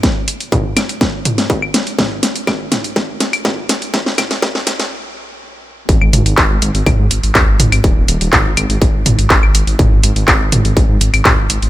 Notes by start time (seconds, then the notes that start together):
0.03 kick, snare, closed hi-hat
0.28 closed hi-hat
0.40 closed hi-hat
0.52 kick, closed hi-hat, mid tom
0.77 snare, closed hi-hat, claves
0.89 closed hi-hat
1.01 kick, snare, closed hi-hat
1.25 closed hi-hat, mid tom
1.38 snare, closed hi-hat
1.50 kick, closed hi-hat
1.62 claves
1.74 snare, closed hi-hat
1.87 closed hi-hat
1.99 kick, snare, closed hi-hat, mid tom
2.23 snare, closed hi-hat
2.36 closed hi-hat
2.47 kick, snare, closed hi-hat, claves
2.72 snare, closed hi-hat, mid tom
2.84 closed hi-hat
2.96 kick, snare, closed hi-hat
3.20 snare, closed hi-hat
3.33 closed hi-hat, claves
3.45 kick, snare, closed hi-hat, mid tom
3.69 snare, closed hi-hat
3.82 closed hi-hat
3.94 kick, snare, closed hi-hat
4.06 snare
4.18 snare, closed hi-hat, mid tom, claves
4.31 snare, closed hi-hat
4.42 kick, snare, closed hi-hat
4.55 snare
4.67 snare, closed hi-hat
4.79 snare, closed hi-hat
5.89 G#1, kick, closed hi-hat
6.01 G#1, claves
6.13 G#1, closed hi-hat, mid tom
6.26 G#1, closed hi-hat
6.38 G#1, kick, clap, closed hi-hat
6.50 G#1
6.62 G#1, closed hi-hat
6.75 G#1, closed hi-hat
6.86 G#1, kick, closed hi-hat, mid tom, claves
6.99 G#2
7.11 G#1, closed hi-hat
7.23 G#1, closed hi-hat
7.35 D#2, kick, clap, closed hi-hat
7.48 G#1
7.59 G#1, closed hi-hat, mid tom
7.72 G#1, closed hi-hat, claves
7.84 D#1, kick, closed hi-hat
7.96 D#1
8.08 D#1, closed hi-hat
8.21 D#1, closed hi-hat
8.33 G#1, kick, clap, closed hi-hat, mid tom
8.45 G#1
8.57 G#1, closed hi-hat, claves
8.70 G#1, closed hi-hat
8.82 G#1, kick, closed hi-hat
8.94 G#1
9.06 G#1, closed hi-hat, mid tom
9.19 G#1, closed hi-hat
9.30 G#1, kick, clap, closed hi-hat
9.43 G#1, claves
9.55 G#1, closed hi-hat
9.67 G#1, closed hi-hat
9.79 G#1, kick, closed hi-hat, mid tom
9.92 G#1
10.03 G#1, closed hi-hat
10.16 G#1, closed hi-hat
10.28 G#1, kick, clap, closed hi-hat, claves
10.40 G#1
10.52 G#1, closed hi-hat, mid tom
10.65 G#1, closed hi-hat
10.77 G#1, kick, closed hi-hat
10.89 G#2
11.01 G#1, closed hi-hat
11.14 G#1, closed hi-hat, claves
11.25 D#2, kick, clap, closed hi-hat, mid tom
11.38 G#1
11.50 G#1, closed hi-hat
11.62 G#1, closed hi-hat